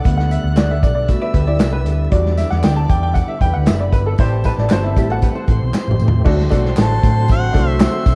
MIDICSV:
0, 0, Header, 1, 9, 480
1, 0, Start_track
1, 0, Tempo, 516796
1, 49, Time_signature, 4, 2, 24, 8
1, 7570, End_track
2, 0, Start_track
2, 0, Title_t, "Violin section"
2, 0, Program_c, 0, 48
2, 37, Note_on_c, 0, 90, 86
2, 42, Note_on_c, 0, 78, 80
2, 986, Note_off_c, 0, 90, 0
2, 988, Note_off_c, 0, 78, 0
2, 1013, Note_on_c, 0, 76, 88
2, 1016, Note_on_c, 0, 88, 96
2, 1954, Note_off_c, 0, 76, 0
2, 1955, Note_off_c, 0, 88, 0
2, 1964, Note_on_c, 0, 74, 87
2, 1965, Note_on_c, 0, 86, 86
2, 3144, Note_off_c, 0, 74, 0
2, 3144, Note_off_c, 0, 86, 0
2, 3169, Note_on_c, 0, 71, 75
2, 3173, Note_on_c, 0, 83, 85
2, 3876, Note_off_c, 0, 71, 0
2, 3878, Note_off_c, 0, 83, 0
2, 3881, Note_on_c, 0, 69, 90
2, 3883, Note_on_c, 0, 81, 90
2, 5061, Note_off_c, 0, 69, 0
2, 5063, Note_off_c, 0, 81, 0
2, 5100, Note_on_c, 0, 72, 79
2, 5101, Note_on_c, 0, 84, 91
2, 5790, Note_off_c, 0, 84, 0
2, 5800, Note_off_c, 0, 72, 0
2, 5801, Note_on_c, 0, 84, 113
2, 5803, Note_on_c, 0, 60, 90
2, 7570, Note_off_c, 0, 60, 0
2, 7570, Note_off_c, 0, 84, 0
2, 7570, End_track
3, 0, Start_track
3, 0, Title_t, "Harmonica"
3, 0, Program_c, 1, 22
3, 6326, Note_on_c, 1, 81, 109
3, 6756, Note_off_c, 1, 81, 0
3, 6792, Note_on_c, 1, 78, 107
3, 7135, Note_off_c, 1, 78, 0
3, 7135, Note_on_c, 1, 76, 107
3, 7256, Note_off_c, 1, 76, 0
3, 7256, Note_on_c, 1, 76, 102
3, 7570, Note_off_c, 1, 76, 0
3, 7570, End_track
4, 0, Start_track
4, 0, Title_t, "Grand piano"
4, 0, Program_c, 2, 0
4, 37, Note_on_c, 2, 57, 58
4, 44, Note_on_c, 2, 59, 46
4, 52, Note_on_c, 2, 78, 62
4, 148, Note_off_c, 2, 78, 0
4, 162, Note_on_c, 2, 78, 93
4, 277, Note_off_c, 2, 78, 0
4, 289, Note_on_c, 2, 76, 92
4, 513, Note_off_c, 2, 76, 0
4, 528, Note_on_c, 2, 74, 92
4, 652, Note_on_c, 2, 76, 92
4, 653, Note_off_c, 2, 74, 0
4, 770, Note_on_c, 2, 74, 84
4, 775, Note_off_c, 2, 76, 0
4, 866, Note_off_c, 2, 74, 0
4, 880, Note_on_c, 2, 74, 90
4, 991, Note_off_c, 2, 57, 0
4, 995, Note_off_c, 2, 59, 0
4, 1005, Note_on_c, 2, 57, 47
4, 1009, Note_on_c, 2, 59, 42
4, 1013, Note_on_c, 2, 66, 51
4, 1130, Note_on_c, 2, 76, 97
4, 1133, Note_off_c, 2, 74, 0
4, 1224, Note_off_c, 2, 57, 0
4, 1226, Note_off_c, 2, 59, 0
4, 1228, Note_off_c, 2, 66, 0
4, 1367, Note_on_c, 2, 74, 92
4, 1378, Note_off_c, 2, 76, 0
4, 1603, Note_on_c, 2, 71, 79
4, 1617, Note_off_c, 2, 74, 0
4, 1830, Note_off_c, 2, 71, 0
4, 1955, Note_on_c, 2, 55, 52
4, 1962, Note_on_c, 2, 62, 49
4, 1967, Note_on_c, 2, 66, 58
4, 1968, Note_on_c, 2, 74, 92
4, 2205, Note_on_c, 2, 76, 105
4, 2217, Note_off_c, 2, 74, 0
4, 2282, Note_off_c, 2, 55, 0
4, 2286, Note_off_c, 2, 62, 0
4, 2289, Note_off_c, 2, 66, 0
4, 2326, Note_on_c, 2, 78, 94
4, 2332, Note_off_c, 2, 76, 0
4, 2452, Note_on_c, 2, 79, 91
4, 2453, Note_off_c, 2, 78, 0
4, 2564, Note_on_c, 2, 81, 93
4, 2575, Note_off_c, 2, 79, 0
4, 2690, Note_on_c, 2, 79, 91
4, 2692, Note_off_c, 2, 81, 0
4, 2800, Note_off_c, 2, 79, 0
4, 2814, Note_on_c, 2, 79, 90
4, 2917, Note_on_c, 2, 78, 93
4, 2924, Note_off_c, 2, 79, 0
4, 3045, Note_on_c, 2, 76, 91
4, 3048, Note_off_c, 2, 78, 0
4, 3171, Note_on_c, 2, 79, 106
4, 3172, Note_off_c, 2, 76, 0
4, 3283, Note_off_c, 2, 79, 0
4, 3284, Note_on_c, 2, 78, 92
4, 3399, Note_off_c, 2, 78, 0
4, 3409, Note_on_c, 2, 76, 80
4, 3478, Note_off_c, 2, 76, 0
4, 3492, Note_on_c, 2, 76, 62
4, 3527, Note_off_c, 2, 76, 0
4, 3528, Note_on_c, 2, 74, 84
4, 3574, Note_off_c, 2, 74, 0
4, 3647, Note_on_c, 2, 71, 75
4, 3773, Note_off_c, 2, 71, 0
4, 3774, Note_on_c, 2, 69, 83
4, 3896, Note_off_c, 2, 69, 0
4, 3898, Note_on_c, 2, 72, 93
4, 4136, Note_on_c, 2, 71, 89
4, 4142, Note_off_c, 2, 72, 0
4, 4257, Note_off_c, 2, 71, 0
4, 4267, Note_on_c, 2, 74, 81
4, 4383, Note_off_c, 2, 74, 0
4, 4386, Note_on_c, 2, 72, 95
4, 4502, Note_off_c, 2, 72, 0
4, 4507, Note_on_c, 2, 76, 90
4, 4606, Note_on_c, 2, 55, 61
4, 4611, Note_on_c, 2, 57, 52
4, 4612, Note_off_c, 2, 76, 0
4, 4619, Note_on_c, 2, 60, 64
4, 4626, Note_on_c, 2, 76, 78
4, 4742, Note_off_c, 2, 76, 0
4, 4751, Note_on_c, 2, 78, 104
4, 5188, Note_off_c, 2, 78, 0
4, 5292, Note_off_c, 2, 55, 0
4, 5295, Note_off_c, 2, 57, 0
4, 5299, Note_off_c, 2, 60, 0
4, 5799, Note_on_c, 2, 57, 91
4, 5800, Note_on_c, 2, 62, 71
4, 5806, Note_on_c, 2, 66, 85
4, 5814, Note_on_c, 2, 74, 104
4, 5815, Note_on_c, 2, 69, 77
4, 5943, Note_off_c, 2, 57, 0
4, 5943, Note_off_c, 2, 62, 0
4, 5947, Note_off_c, 2, 66, 0
4, 5951, Note_off_c, 2, 69, 0
4, 5951, Note_off_c, 2, 74, 0
4, 6035, Note_on_c, 2, 57, 81
4, 6040, Note_on_c, 2, 62, 82
4, 6046, Note_on_c, 2, 66, 80
4, 6047, Note_on_c, 2, 69, 79
4, 6050, Note_on_c, 2, 74, 94
4, 6596, Note_off_c, 2, 57, 0
4, 6598, Note_off_c, 2, 62, 0
4, 6601, Note_off_c, 2, 66, 0
4, 6602, Note_off_c, 2, 69, 0
4, 6603, Note_off_c, 2, 74, 0
4, 6991, Note_on_c, 2, 57, 78
4, 6993, Note_on_c, 2, 66, 71
4, 6994, Note_on_c, 2, 62, 67
4, 7003, Note_on_c, 2, 69, 70
4, 7003, Note_on_c, 2, 74, 87
4, 7415, Note_off_c, 2, 57, 0
4, 7417, Note_off_c, 2, 62, 0
4, 7417, Note_off_c, 2, 66, 0
4, 7421, Note_off_c, 2, 69, 0
4, 7422, Note_off_c, 2, 74, 0
4, 7570, End_track
5, 0, Start_track
5, 0, Title_t, "Hollow-body jazz guitar"
5, 0, Program_c, 3, 26
5, 1130, Note_on_c, 3, 74, 80
5, 1135, Note_on_c, 3, 71, 62
5, 1236, Note_off_c, 3, 71, 0
5, 1244, Note_off_c, 3, 74, 0
5, 1247, Note_on_c, 3, 71, 83
5, 1257, Note_on_c, 3, 67, 64
5, 1361, Note_off_c, 3, 67, 0
5, 1363, Note_off_c, 3, 71, 0
5, 1374, Note_on_c, 3, 64, 67
5, 1375, Note_on_c, 3, 67, 63
5, 1942, Note_off_c, 3, 67, 0
5, 1943, Note_off_c, 3, 64, 0
5, 4371, Note_on_c, 3, 62, 66
5, 4375, Note_on_c, 3, 66, 61
5, 4484, Note_off_c, 3, 62, 0
5, 4485, Note_off_c, 3, 66, 0
5, 4488, Note_on_c, 3, 64, 83
5, 4497, Note_on_c, 3, 60, 72
5, 4603, Note_off_c, 3, 64, 0
5, 4608, Note_off_c, 3, 60, 0
5, 4620, Note_on_c, 3, 67, 87
5, 4627, Note_on_c, 3, 64, 73
5, 4730, Note_off_c, 3, 67, 0
5, 4733, Note_off_c, 3, 64, 0
5, 4737, Note_on_c, 3, 69, 91
5, 4742, Note_on_c, 3, 66, 74
5, 4848, Note_off_c, 3, 69, 0
5, 4851, Note_off_c, 3, 66, 0
5, 4856, Note_on_c, 3, 67, 70
5, 4861, Note_on_c, 3, 71, 76
5, 4968, Note_off_c, 3, 67, 0
5, 4968, Note_off_c, 3, 71, 0
5, 4971, Note_on_c, 3, 72, 80
5, 4976, Note_on_c, 3, 69, 68
5, 5655, Note_off_c, 3, 72, 0
5, 5657, Note_off_c, 3, 69, 0
5, 7570, End_track
6, 0, Start_track
6, 0, Title_t, "Horn section"
6, 0, Program_c, 4, 61
6, 3894, Note_on_c, 4, 52, 98
6, 3895, Note_on_c, 4, 55, 101
6, 3895, Note_on_c, 4, 60, 96
6, 3895, Note_on_c, 4, 67, 110
6, 4235, Note_off_c, 4, 52, 0
6, 4235, Note_off_c, 4, 55, 0
6, 4235, Note_off_c, 4, 60, 0
6, 4235, Note_off_c, 4, 67, 0
6, 5814, Note_on_c, 4, 66, 85
6, 5815, Note_on_c, 4, 57, 88
6, 5815, Note_on_c, 4, 60, 97
6, 5815, Note_on_c, 4, 72, 106
6, 7570, Note_off_c, 4, 57, 0
6, 7570, Note_off_c, 4, 60, 0
6, 7570, Note_off_c, 4, 66, 0
6, 7570, Note_off_c, 4, 72, 0
6, 7570, End_track
7, 0, Start_track
7, 0, Title_t, "Tonewheel organ"
7, 0, Program_c, 5, 16
7, 0, Note_on_c, 5, 50, 58
7, 0, Note_on_c, 5, 69, 70
7, 48, Note_on_c, 5, 59, 64
7, 52, Note_on_c, 5, 55, 58
7, 1932, Note_off_c, 5, 69, 0
7, 1975, Note_on_c, 5, 64, 74
7, 3852, Note_off_c, 5, 50, 0
7, 3854, Note_off_c, 5, 59, 0
7, 3856, Note_off_c, 5, 55, 0
7, 3874, Note_off_c, 5, 64, 0
7, 3903, Note_on_c, 5, 60, 63
7, 3905, Note_on_c, 5, 52, 64
7, 3905, Note_on_c, 5, 57, 55
7, 3907, Note_on_c, 5, 67, 74
7, 5797, Note_off_c, 5, 60, 0
7, 5798, Note_off_c, 5, 52, 0
7, 5798, Note_off_c, 5, 57, 0
7, 5799, Note_off_c, 5, 67, 0
7, 5809, Note_on_c, 5, 57, 54
7, 5809, Note_on_c, 5, 66, 79
7, 5810, Note_on_c, 5, 50, 69
7, 5813, Note_on_c, 5, 54, 63
7, 7570, Note_off_c, 5, 50, 0
7, 7570, Note_off_c, 5, 54, 0
7, 7570, Note_off_c, 5, 57, 0
7, 7570, Note_off_c, 5, 66, 0
7, 7570, End_track
8, 0, Start_track
8, 0, Title_t, "Picked electric bass"
8, 0, Program_c, 6, 34
8, 53, Note_on_c, 6, 38, 96
8, 335, Note_off_c, 6, 38, 0
8, 409, Note_on_c, 6, 38, 70
8, 775, Note_on_c, 6, 35, 83
8, 789, Note_off_c, 6, 38, 0
8, 1057, Note_off_c, 6, 35, 0
8, 1249, Note_on_c, 6, 38, 78
8, 1344, Note_off_c, 6, 38, 0
8, 1363, Note_on_c, 6, 38, 83
8, 1461, Note_off_c, 6, 38, 0
8, 1490, Note_on_c, 6, 36, 91
8, 1727, Note_off_c, 6, 36, 0
8, 1727, Note_on_c, 6, 38, 72
8, 1918, Note_off_c, 6, 38, 0
8, 1967, Note_on_c, 6, 40, 108
8, 2253, Note_off_c, 6, 40, 0
8, 2337, Note_on_c, 6, 40, 82
8, 2429, Note_off_c, 6, 40, 0
8, 2458, Note_on_c, 6, 38, 97
8, 2644, Note_off_c, 6, 38, 0
8, 2692, Note_on_c, 6, 40, 93
8, 2975, Note_off_c, 6, 40, 0
8, 3165, Note_on_c, 6, 40, 91
8, 3262, Note_off_c, 6, 40, 0
8, 3310, Note_on_c, 6, 38, 89
8, 3397, Note_off_c, 6, 38, 0
8, 3428, Note_on_c, 6, 30, 87
8, 3610, Note_off_c, 6, 30, 0
8, 3646, Note_on_c, 6, 31, 89
8, 3837, Note_off_c, 6, 31, 0
8, 3894, Note_on_c, 6, 33, 113
8, 4176, Note_off_c, 6, 33, 0
8, 4253, Note_on_c, 6, 33, 81
8, 4347, Note_off_c, 6, 33, 0
8, 4377, Note_on_c, 6, 31, 88
8, 4613, Note_off_c, 6, 31, 0
8, 4613, Note_on_c, 6, 33, 91
8, 4895, Note_off_c, 6, 33, 0
8, 5096, Note_on_c, 6, 33, 96
8, 5188, Note_off_c, 6, 33, 0
8, 5224, Note_on_c, 6, 35, 84
8, 5313, Note_off_c, 6, 35, 0
8, 5458, Note_on_c, 6, 33, 91
8, 5550, Note_off_c, 6, 33, 0
8, 5581, Note_on_c, 6, 45, 91
8, 5766, Note_off_c, 6, 45, 0
8, 5816, Note_on_c, 6, 38, 125
8, 6002, Note_off_c, 6, 38, 0
8, 6052, Note_on_c, 6, 35, 93
8, 6240, Note_off_c, 6, 35, 0
8, 6290, Note_on_c, 6, 33, 84
8, 6479, Note_off_c, 6, 33, 0
8, 6534, Note_on_c, 6, 45, 81
8, 6776, Note_on_c, 6, 33, 110
8, 6790, Note_off_c, 6, 45, 0
8, 6962, Note_off_c, 6, 33, 0
8, 7008, Note_on_c, 6, 36, 82
8, 7292, Note_off_c, 6, 36, 0
8, 7490, Note_on_c, 6, 35, 84
8, 7570, Note_off_c, 6, 35, 0
8, 7570, End_track
9, 0, Start_track
9, 0, Title_t, "Drums"
9, 40, Note_on_c, 9, 54, 38
9, 49, Note_on_c, 9, 36, 105
9, 49, Note_on_c, 9, 42, 104
9, 133, Note_off_c, 9, 54, 0
9, 141, Note_off_c, 9, 36, 0
9, 142, Note_off_c, 9, 42, 0
9, 178, Note_on_c, 9, 38, 35
9, 271, Note_off_c, 9, 38, 0
9, 288, Note_on_c, 9, 54, 49
9, 294, Note_on_c, 9, 42, 62
9, 381, Note_off_c, 9, 54, 0
9, 387, Note_off_c, 9, 42, 0
9, 526, Note_on_c, 9, 39, 79
9, 526, Note_on_c, 9, 54, 82
9, 531, Note_on_c, 9, 42, 90
9, 532, Note_on_c, 9, 38, 99
9, 619, Note_off_c, 9, 39, 0
9, 619, Note_off_c, 9, 54, 0
9, 624, Note_off_c, 9, 42, 0
9, 625, Note_off_c, 9, 38, 0
9, 770, Note_on_c, 9, 36, 99
9, 772, Note_on_c, 9, 42, 78
9, 777, Note_on_c, 9, 54, 58
9, 863, Note_off_c, 9, 36, 0
9, 865, Note_off_c, 9, 42, 0
9, 870, Note_off_c, 9, 54, 0
9, 1004, Note_on_c, 9, 42, 77
9, 1011, Note_on_c, 9, 36, 80
9, 1015, Note_on_c, 9, 54, 52
9, 1097, Note_off_c, 9, 42, 0
9, 1104, Note_off_c, 9, 36, 0
9, 1108, Note_off_c, 9, 54, 0
9, 1244, Note_on_c, 9, 54, 30
9, 1245, Note_on_c, 9, 36, 90
9, 1247, Note_on_c, 9, 42, 91
9, 1337, Note_off_c, 9, 54, 0
9, 1338, Note_off_c, 9, 36, 0
9, 1340, Note_off_c, 9, 42, 0
9, 1476, Note_on_c, 9, 42, 84
9, 1486, Note_on_c, 9, 38, 122
9, 1491, Note_on_c, 9, 39, 104
9, 1491, Note_on_c, 9, 54, 108
9, 1569, Note_off_c, 9, 42, 0
9, 1579, Note_off_c, 9, 38, 0
9, 1584, Note_off_c, 9, 39, 0
9, 1584, Note_off_c, 9, 54, 0
9, 1725, Note_on_c, 9, 42, 73
9, 1729, Note_on_c, 9, 54, 53
9, 1818, Note_off_c, 9, 42, 0
9, 1822, Note_off_c, 9, 54, 0
9, 1965, Note_on_c, 9, 42, 104
9, 1968, Note_on_c, 9, 36, 109
9, 2058, Note_off_c, 9, 42, 0
9, 2061, Note_off_c, 9, 36, 0
9, 2095, Note_on_c, 9, 38, 36
9, 2188, Note_off_c, 9, 38, 0
9, 2205, Note_on_c, 9, 54, 56
9, 2208, Note_on_c, 9, 38, 31
9, 2211, Note_on_c, 9, 42, 69
9, 2297, Note_off_c, 9, 54, 0
9, 2301, Note_off_c, 9, 38, 0
9, 2303, Note_off_c, 9, 42, 0
9, 2332, Note_on_c, 9, 38, 35
9, 2425, Note_off_c, 9, 38, 0
9, 2446, Note_on_c, 9, 39, 81
9, 2446, Note_on_c, 9, 54, 81
9, 2450, Note_on_c, 9, 42, 89
9, 2451, Note_on_c, 9, 38, 105
9, 2539, Note_off_c, 9, 39, 0
9, 2539, Note_off_c, 9, 54, 0
9, 2543, Note_off_c, 9, 42, 0
9, 2544, Note_off_c, 9, 38, 0
9, 2689, Note_on_c, 9, 36, 102
9, 2689, Note_on_c, 9, 42, 67
9, 2699, Note_on_c, 9, 54, 52
9, 2782, Note_off_c, 9, 36, 0
9, 2782, Note_off_c, 9, 42, 0
9, 2792, Note_off_c, 9, 54, 0
9, 2926, Note_on_c, 9, 42, 71
9, 2931, Note_on_c, 9, 36, 78
9, 2935, Note_on_c, 9, 54, 48
9, 3019, Note_off_c, 9, 42, 0
9, 3024, Note_off_c, 9, 36, 0
9, 3028, Note_off_c, 9, 54, 0
9, 3166, Note_on_c, 9, 36, 90
9, 3169, Note_on_c, 9, 42, 84
9, 3171, Note_on_c, 9, 54, 30
9, 3259, Note_off_c, 9, 36, 0
9, 3262, Note_off_c, 9, 42, 0
9, 3264, Note_off_c, 9, 54, 0
9, 3399, Note_on_c, 9, 42, 78
9, 3409, Note_on_c, 9, 38, 109
9, 3412, Note_on_c, 9, 39, 107
9, 3412, Note_on_c, 9, 54, 101
9, 3492, Note_off_c, 9, 42, 0
9, 3502, Note_off_c, 9, 38, 0
9, 3505, Note_off_c, 9, 39, 0
9, 3505, Note_off_c, 9, 54, 0
9, 3645, Note_on_c, 9, 42, 73
9, 3646, Note_on_c, 9, 36, 91
9, 3656, Note_on_c, 9, 54, 49
9, 3738, Note_off_c, 9, 42, 0
9, 3739, Note_off_c, 9, 36, 0
9, 3749, Note_off_c, 9, 54, 0
9, 3881, Note_on_c, 9, 54, 37
9, 3885, Note_on_c, 9, 42, 109
9, 3890, Note_on_c, 9, 36, 117
9, 3974, Note_off_c, 9, 54, 0
9, 3978, Note_off_c, 9, 42, 0
9, 3982, Note_off_c, 9, 36, 0
9, 4123, Note_on_c, 9, 54, 54
9, 4133, Note_on_c, 9, 36, 71
9, 4133, Note_on_c, 9, 38, 31
9, 4135, Note_on_c, 9, 42, 62
9, 4216, Note_off_c, 9, 54, 0
9, 4225, Note_off_c, 9, 36, 0
9, 4226, Note_off_c, 9, 38, 0
9, 4228, Note_off_c, 9, 42, 0
9, 4253, Note_on_c, 9, 38, 35
9, 4346, Note_off_c, 9, 38, 0
9, 4360, Note_on_c, 9, 39, 87
9, 4360, Note_on_c, 9, 54, 87
9, 4372, Note_on_c, 9, 42, 106
9, 4374, Note_on_c, 9, 38, 109
9, 4453, Note_off_c, 9, 39, 0
9, 4453, Note_off_c, 9, 54, 0
9, 4465, Note_off_c, 9, 42, 0
9, 4467, Note_off_c, 9, 38, 0
9, 4612, Note_on_c, 9, 36, 95
9, 4613, Note_on_c, 9, 42, 76
9, 4617, Note_on_c, 9, 54, 53
9, 4705, Note_off_c, 9, 36, 0
9, 4705, Note_off_c, 9, 42, 0
9, 4710, Note_off_c, 9, 54, 0
9, 4846, Note_on_c, 9, 54, 49
9, 4849, Note_on_c, 9, 42, 79
9, 4854, Note_on_c, 9, 36, 87
9, 4939, Note_off_c, 9, 54, 0
9, 4942, Note_off_c, 9, 42, 0
9, 4947, Note_off_c, 9, 36, 0
9, 5085, Note_on_c, 9, 54, 28
9, 5090, Note_on_c, 9, 36, 97
9, 5095, Note_on_c, 9, 42, 81
9, 5178, Note_off_c, 9, 54, 0
9, 5183, Note_off_c, 9, 36, 0
9, 5188, Note_off_c, 9, 42, 0
9, 5331, Note_on_c, 9, 39, 111
9, 5331, Note_on_c, 9, 54, 95
9, 5334, Note_on_c, 9, 38, 57
9, 5423, Note_off_c, 9, 39, 0
9, 5423, Note_off_c, 9, 54, 0
9, 5427, Note_off_c, 9, 38, 0
9, 5488, Note_on_c, 9, 45, 64
9, 5568, Note_on_c, 9, 54, 50
9, 5581, Note_off_c, 9, 45, 0
9, 5647, Note_on_c, 9, 43, 102
9, 5661, Note_off_c, 9, 54, 0
9, 5740, Note_off_c, 9, 43, 0
9, 5808, Note_on_c, 9, 49, 102
9, 5812, Note_on_c, 9, 36, 116
9, 5901, Note_off_c, 9, 49, 0
9, 5905, Note_off_c, 9, 36, 0
9, 5942, Note_on_c, 9, 38, 40
9, 6035, Note_off_c, 9, 38, 0
9, 6047, Note_on_c, 9, 54, 59
9, 6054, Note_on_c, 9, 36, 82
9, 6057, Note_on_c, 9, 38, 33
9, 6059, Note_on_c, 9, 42, 70
9, 6140, Note_off_c, 9, 54, 0
9, 6147, Note_off_c, 9, 36, 0
9, 6150, Note_off_c, 9, 38, 0
9, 6152, Note_off_c, 9, 42, 0
9, 6181, Note_on_c, 9, 38, 36
9, 6273, Note_off_c, 9, 38, 0
9, 6284, Note_on_c, 9, 39, 84
9, 6284, Note_on_c, 9, 54, 84
9, 6297, Note_on_c, 9, 42, 103
9, 6299, Note_on_c, 9, 38, 102
9, 6376, Note_off_c, 9, 39, 0
9, 6376, Note_off_c, 9, 54, 0
9, 6390, Note_off_c, 9, 42, 0
9, 6392, Note_off_c, 9, 38, 0
9, 6533, Note_on_c, 9, 36, 104
9, 6534, Note_on_c, 9, 54, 56
9, 6537, Note_on_c, 9, 42, 79
9, 6626, Note_off_c, 9, 36, 0
9, 6627, Note_off_c, 9, 54, 0
9, 6630, Note_off_c, 9, 42, 0
9, 6764, Note_on_c, 9, 54, 56
9, 6775, Note_on_c, 9, 42, 76
9, 6776, Note_on_c, 9, 36, 85
9, 6857, Note_off_c, 9, 54, 0
9, 6868, Note_off_c, 9, 42, 0
9, 6869, Note_off_c, 9, 36, 0
9, 7001, Note_on_c, 9, 54, 32
9, 7009, Note_on_c, 9, 36, 90
9, 7019, Note_on_c, 9, 42, 89
9, 7094, Note_off_c, 9, 54, 0
9, 7102, Note_off_c, 9, 36, 0
9, 7112, Note_off_c, 9, 42, 0
9, 7240, Note_on_c, 9, 42, 76
9, 7245, Note_on_c, 9, 39, 116
9, 7245, Note_on_c, 9, 54, 102
9, 7250, Note_on_c, 9, 38, 117
9, 7333, Note_off_c, 9, 42, 0
9, 7338, Note_off_c, 9, 39, 0
9, 7338, Note_off_c, 9, 54, 0
9, 7343, Note_off_c, 9, 38, 0
9, 7486, Note_on_c, 9, 36, 101
9, 7486, Note_on_c, 9, 54, 50
9, 7490, Note_on_c, 9, 42, 77
9, 7570, Note_off_c, 9, 36, 0
9, 7570, Note_off_c, 9, 42, 0
9, 7570, Note_off_c, 9, 54, 0
9, 7570, End_track
0, 0, End_of_file